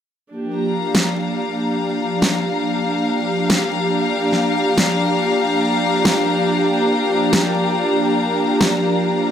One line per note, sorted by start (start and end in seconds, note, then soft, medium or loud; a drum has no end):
0.31 9.31 F3 medium
0.31 9.31 A#3 medium
0.31 9.31 D4 medium
0.31 9.31 G4 medium
0.36 9.31 G4 medium
0.56 9.31 A#5 medium
0.68 9.31 F5 medium
0.95 snare loud
2.22 snare loud
3.50 snare loud
4.33 snare soft
4.78 snare loud
6.05 snare loud
7.33 snare loud
8.61 snare loud